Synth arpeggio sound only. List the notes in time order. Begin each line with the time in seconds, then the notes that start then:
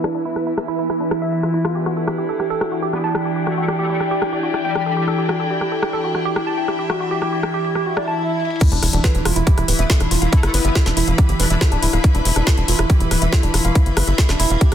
0.04 D4
0.15 D4
0.25 E4
0.36 B4
0.47 E4
0.58 E5
0.68 E4
0.79 E4
0.90 E4
1.00 D4
1.11 E4
1.22 E5
1.33 E5
1.43 F4
1.54 E4
1.65 F4
1.75 G4
1.86 F#4
1.97 A4
2.07 G4
2.18 G4
2.29 A4
2.40 G4
2.50 A4
2.61 F#4
2.72 F#4
2.83 G4
2.93 G4
3.04 A5
3.15 G5
3.25 G4
3.36 G4
3.47 F#4
3.58 F#4
3.68 G4
3.79 G4
3.90 G4
4.00 G5
4.11 G4
4.22 G4
4.33 G4
4.43 F#4
4.54 G4
4.65 G5
4.75 G5
4.86 A4
4.97 G4
5.08 A4
5.18 G4
5.29 F#4
5.40 A4
5.50 G4
5.61 G4
5.72 A4
5.83 G4
5.93 A4
6.04 F#4
6.15 F#4
6.25 G4
6.36 G4
6.47 A5
6.58 G5
6.68 G4
6.79 G4
6.90 F#4
7.00 F#4
7.11 G4
7.22 G4
7.33 G4
7.43 G5
7.54 G4
7.65 G4
7.75 G4
7.86 F#4
7.97 D5
8.08 A5
8.61 E4
8.72 D4
8.83 E4
8.93 D4
9.04 B4
9.15 D4
9.25 F4
9.36 E4
9.47 G4
9.58 E4
9.68 B4
9.79 E5
9.90 E4
10.00 D4
10.11 F4
10.22 F5
10.33 E4
10.43 E4
10.54 B4
10.65 E5
10.75 E4
10.86 D4
10.97 E4
11.08 F5
11.18 G4
11.29 G4
11.40 B4
11.50 E5
11.61 E4
11.72 D4
11.83 E4
11.93 F5
12.04 E4
12.15 D4
12.25 E4
12.36 D4
12.47 B4
12.58 D4
12.68 F4
12.79 E4
12.90 G4
13.00 E4
13.11 B4
13.22 E5
13.32 E4
13.43 D4
13.54 F4
13.65 F5
13.75 E4
13.86 E4
13.97 B4
14.08 E5
14.18 E4
14.29 D4
14.40 E4
14.50 F5
14.61 G4